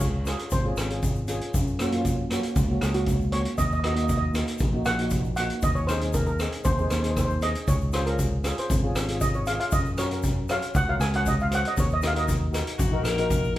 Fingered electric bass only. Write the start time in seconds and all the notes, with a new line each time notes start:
Already playing: C#2
0.52 G#1
0.77 G#1
1.54 F#2
2.56 C#2
2.82 C#2
3.58 D#2
4.60 A#1
4.87 A#1
5.62 D#2
6.65 D#2
6.91 D#2
7.67 C#2
8.70 G#1
8.95 G#1
9.72 F#2
10.75 C#2
11.00 C#2
11.77 D#2
12.79 A#1
13.04 A#1